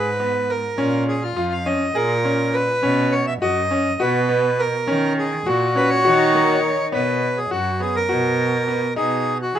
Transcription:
Already playing: G#2 B4
0.20 B3
0.50 A#4
0.78 A#2 C#4
1.08 G#4
1.23 F4
1.37 F2 F4
1.52 F5
1.66 C#4 D#5
1.95 A#2 G#4 A#4
2.25 C#4
2.54 B4
2.83 B2 C#4
3.12 C#5
3.27 E5
3.42 F#2 F#4 D#5
3.71 C#4
4.00 B2 F#4 B4 F#5
4.29 B3
4.59 A#4
4.87 D#3 C#4
5.19 G#4
5.46 A#2 F#4
5.75 C#4 B4
5.90 C#5
6.05 D#3 D#4 F#4
6.34 A#3 A#4
6.54 C#5
6.73 D#5
6.92 B2 B3 B4 C#5
7.37 G#4
7.51 F#2 F#4
7.80 B3 G#4
7.96 A#4
8.09 B2 F#4
8.68 B3
8.96 B2 D#4 G#4
9.42 F#4
9.55 D#3 E4 G#4

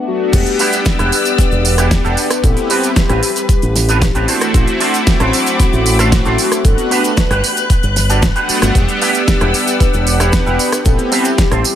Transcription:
0.06 A3 B3 D4 F#4
0.33 E1 B3 D4 G4 D5 F#5 E6, kick, closed hi-hat, crash, tambourine, cabasa
0.46 closed hi-hat, cabasa
0.59 D4 E4 G4 B4, open hi-hat, tambourine
0.72 B3 D4 G4 F#5, closed hi-hat, tambourine, cabasa
0.85 G4, kick, snare, closed hi-hat, tambourine, cabasa
0.99 E1 D4 E4 G4 B4, cross-stick, closed hi-hat, cabasa
1.12 open hi-hat, tambourine
1.25 closed hi-hat, tambourine, cabasa
1.38 B4, muted fingered electric bass stroke, kick, snare, closed hi-hat, tambourine, cabasa
1.52 E1, cabasa
1.65 open hi-hat, tambourine
1.78 B3 D4 E4 G4 B4 F#5, cross-stick, closed hi-hat, tambourine, cabasa
1.91 B4, kick, snare, closed hi-hat, tambourine, cabasa
2.04 E1 D4 E4 G4 A4, cabasa
2.17 B3 D4 F#4 G4, open hi-hat, tambourine
2.30 cross-stick, closed hi-hat, tambourine, cabasa
2.43 A1 B3 C4 E4 G4 A4 B4, kick, closed hi-hat, tambourine, cabasa
2.57 closed hi-hat, cabasa
2.70 C4 G4 A4 B4, open hi-hat, tambourine
2.83 B3 C4 E4 G4, closed hi-hat, tambourine, cabasa
2.96 kick, snare, closed hi-hat, tambourine, cabasa
3.09 A1 C4 G4 A4 B4, cross-stick, closed hi-hat, cabasa
3.23 open hi-hat, tambourine
3.36 closed hi-hat, tambourine, cabasa
3.49 kick, closed hi-hat, tambourine, cabasa
3.62 A1, closed hi-hat, cabasa
3.76 snare, open hi-hat, tambourine
3.88 C4 G4 A4 B4, closed hi-hat, tambourine, cabasa
4.02 kick, snare, closed hi-hat, tambourine, cabasa
4.14 A1 B3 C4 E4 G4 A4 B4, closed hi-hat, cabasa
4.27 A3 C4 D4 E4 F#4 A4 C5 F#5 D6, open hi-hat, tambourine
4.41 cross-stick, closed hi-hat, tambourine, cabasa
4.53 A1 A3 C4 E4 F#4, kick, closed hi-hat, tambourine, cabasa
4.67 closed hi-hat, cabasa
4.80 D4 F#4 A4 C5, open hi-hat, tambourine
4.93 A3 C4 E4 B5, closed hi-hat, tambourine, cabasa
5.07 F#4, kick, snare, closed hi-hat, tambourine, cabasa
5.20 A1 D4 F#4 A4 C5, cross-stick, closed hi-hat, cabasa
5.33 open hi-hat, tambourine
5.46 closed hi-hat, tambourine, cabasa
5.59 F#4, muted fingered electric bass stroke, kick, snare, closed hi-hat, tambourine, cabasa
5.73 A1, cabasa
5.86 open hi-hat, tambourine
5.99 A3 C4 D4 E4 F#4 A4 C5, cross-stick, closed hi-hat, tambourine, cabasa
6.12 kick, snare, closed hi-hat, tambourine, cabasa
6.25 A1 D4 F#4 A4 C5, cabasa
6.38 A3 C4 E4 F#4, open hi-hat, tambourine
6.52 cross-stick, closed hi-hat, tambourine, cabasa
6.64 G1 A3 B3 D4 F#4 A4 B4 F#6, kick, closed hi-hat, tambourine, cabasa
6.78 closed hi-hat, cabasa
6.90 D4 F#4 G4 B4, open hi-hat, tambourine
7.04 A3 B3 D4 F#4, closed hi-hat, tambourine, cabasa
7.17 kick, snare, closed hi-hat, tambourine, cabasa
7.30 G1 D4 F#4 G4 B4, cross-stick, closed hi-hat, cabasa
7.44 open hi-hat, tambourine
7.57 closed hi-hat, tambourine, cabasa
7.70 kick, closed hi-hat, tambourine, cabasa
7.83 G1, closed hi-hat, cabasa
7.96 snare, open hi-hat, tambourine
8.09 D4 F#4 G4 A4, closed hi-hat, tambourine, cabasa
8.22 kick, snare, closed hi-hat, tambourine, cabasa
8.35 A3 B3 D4 F#4 G4 B4 F#5, closed hi-hat, cabasa
8.49 F#4, muted fingered electric bass stroke, open hi-hat, tambourine
8.62 G1, cross-stick, closed hi-hat, tambourine, cabasa
8.75 E1 B3 D4 G4 D5 F#5 E6, kick, closed hi-hat, tambourine, cabasa
8.88 closed hi-hat, cabasa
9.01 D4 E4 G4 B4, open hi-hat, tambourine
9.14 B3 D4 G4 F#5, closed hi-hat, tambourine, cabasa
9.27 G4, kick, snare, closed hi-hat, tambourine, cabasa
9.41 E1 D4 E4 G4 B4, cross-stick, closed hi-hat, cabasa
9.54 open hi-hat, tambourine
9.67 closed hi-hat, tambourine, cabasa
9.80 B4, muted fingered electric bass stroke, kick, snare, closed hi-hat, tambourine, cabasa
9.94 E1, cabasa
10.07 open hi-hat, tambourine
10.19 B3 D4 E4 G4 B4 F#5, cross-stick, closed hi-hat, tambourine, cabasa
10.32 B4, kick, snare, closed hi-hat, tambourine, cabasa
10.46 E1 D4 E4 G4 B4, cabasa
10.59 B3 D4 F#4 G4, open hi-hat, tambourine
10.72 cross-stick, closed hi-hat, tambourine, cabasa
10.85 A1 B3 C4 E4 G4 A4, kick, closed hi-hat, tambourine, cabasa
10.99 closed hi-hat, cabasa
11.11 C4 G4 A4 B4, open hi-hat, tambourine
11.25 B3 C4 E4 G4, closed hi-hat, tambourine, cabasa
11.38 kick, snare, closed hi-hat, tambourine, cabasa
11.51 A1 C4 G4 A4 C5, cross-stick, closed hi-hat, cabasa
11.64 open hi-hat, tambourine

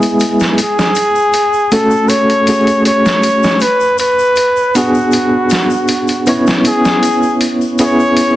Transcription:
Already playing: G#3 B3 E4 G#4
0.02 closed hi-hat, shaker
0.20 closed hi-hat, shaker
0.40 snare, shaker
0.58 G#4, closed hi-hat, shaker
0.79 snare, shaker
0.95 closed hi-hat, shaker
1.15 shaker
1.33 closed hi-hat, shaker
1.53 shaker
1.72 A3 C#4 F#4 A4, closed hi-hat, shaker
1.90 shaker
2.08 C#5, closed hi-hat, shaker
2.30 closed hi-hat
2.47 A3 C#4 F#4 G#4, closed hi-hat, shaker
2.67 closed hi-hat, shaker
2.85 C#5, closed hi-hat, shaker
3.06 snare, shaker
3.23 closed hi-hat, shaker
3.43 snare, shaker
3.60 B4, closed hi-hat, shaker
3.80 shaker
3.98 B4, closed hi-hat, shaker
4.19 shaker
4.36 closed hi-hat, shaker
4.56 shaker
4.75 B3 D4 F#4 G#4, closed hi-hat, shaker
4.94 shaker
5.11 closed hi-hat, shaker
5.50 snare, closed hi-hat, shaker
5.70 shaker
5.88 closed hi-hat, shaker
6.08 closed hi-hat, shaker
6.27 B3 C#4 E4 C#5, closed hi-hat, shaker
6.47 snare, shaker
6.65 G#4, closed hi-hat, shaker
6.85 snare, shaker
7.03 closed hi-hat, shaker
7.22 shaker
7.41 closed hi-hat, shaker
7.61 shaker
7.79 B3 C#4 E4 G#4, closed hi-hat, shaker
7.83 C#5
7.99 shaker
8.17 closed hi-hat, shaker

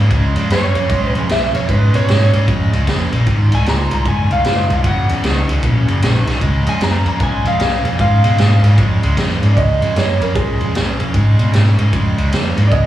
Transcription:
0.11 C#2 C#3 G#3, kick, ride
0.35 F2 C#3 G#3, ride
0.50 F#2 C#3 A#3 C#5, snare, ride
0.75 F2 C#3 A#3, ride
0.89 B1 C#3 G#3, kick, ride
1.09 B4
1.15 F2 C#3 G#3, ride
1.29 B1 C#3 A#3 E5, snare, ride
1.54 F2 C#3 A#3 C#5, ride
1.69 G#2 C#3 G#3 B4, kick, ride
1.93 B2 C#3 G#3 C#5, ride
2.08 G#2 C#3 A#3, snare, ride
2.33 G#2 C#3 A#3, ride
2.48 F2 C#3 G#3, kick, ride
2.72 C#2 C#3 G#3, ride
2.87 F2 C#3 A#3, kick, snare, ride
3.12 A#1 C#3 A#3, ride
3.26 G#1 G#2 D#3, kick, ride
3.52 C2 G#2 D#3 G#5, ride
3.66 C#2 G#2 F3 A#5, snare, ride
3.91 C2 G#2 F3 A#5, ride
4.05 F#1 G#2 D#3 G#5, kick, ride
4.30 C2 G#2 D#3 F5, ride
4.44 F#1 G#2 F3, snare, ride
4.69 C2 G#2 F3, ride
4.84 F#1 F#2 C#3 F#5, kick, ride
5.09 E2 F#2 C#3, ride
5.23 C#2 F#2 D#3, snare, ride
5.48 C#2 F#2 D#3, ride
5.62 A#1 F#2 C#3, kick, ride
5.87 F#1 F#2 C#3, ride
6.02 A#1 F#2 D#3, snare, ride
6.26 B1 F#2 D#3, snare, ride
6.41 C#2 C#3 G#3, kick, ride
6.66 F2 C#3 G#3 G#5, ride
6.81 F#2 C#3 A#3 A#5, snare, ride
7.05 F2 C#3 A#3 A#5, ride
7.20 B1 C#3 G#3 G#5, kick, ride
7.44 F2 C#3 G#3 F5, ride
7.59 B1 C#3 A#3, snare, ride
7.84 F2 C#3 A#3, ride
7.99 G#2 C#3 G#3 F5, kick, ride
8.24 B2 C#3 G#3, ride
8.38 G#2 C#3 A#3, snare, ride
8.63 G#2 C#3 A#3, ride
8.78 F2 C#3 G#3, kick, ride
9.02 C#2 C#3 G#3, ride
9.17 F2 C#3 A#3, kick, snare, ride
9.42 G#2 C#3 A#3, ride
9.53 C#2 C#3 D5, kick
9.57 G#3 D#5, ride
9.81 F2 C#3 G#3, ride
9.95 F#2 C#3 A#3 C#5, snare, ride
10.20 F2 C#3 A#3 A#4, ride
10.35 B1 C#3 G#3 G#4, kick, ride
10.60 F2 C#3 G#3, ride
10.74 B1 C#3 A#3, snare, ride
10.99 F2 C#3 A#3, ride
11.14 G#2 C#3 G#3, kick, ride
11.38 B2 C#3 G#3, ride
11.52 G#2 C#3 A#3, snare, ride
11.77 G#2 C#3 A#3, ride
11.92 F2 C#3 G#3, kick, ride
12.17 C#2 C#3 G#3, ride
12.32 F2 C#3 A#3, snare, ride
12.57 G#2 C#3 A#3, ride
12.67 C#3 D5
12.71 C#2 G#3 D#5, kick, ride

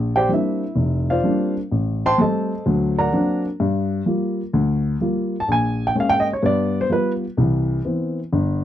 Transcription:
Already playing: A#1
0.16 G4 C5 D5 G5
0.29 G3 A#3 C4 D4
0.34 E4 E5
0.76 F1
1.10 F4 C5 D5 F5
1.24 G3 A#3 C4 D4
1.71 A1
2.06 C5 G5 A5 C6
2.18 G3 A3 C4 A4 C5 D#5 A5
2.66 D2 F#3
2.98 A#4 D5 F#5 A#5
3.12 F#3 A#3 C4 D4
3.60 G2
4.06 G3 A#3 F4
4.53 D2
5.01 G3 A#3 F4
5.40 A5
5.48 A#1 G#5
5.87 G5
5.96 G#3 A#3 C#4
6.00 F5
6.10 G5
6.20 D#5
6.33 C#5
6.43 G2 B3 D5
6.81 C5
6.90 G3 B3 F4 B4
7.37 C2 E3
7.85 E3 B3 C4
8.33 G1

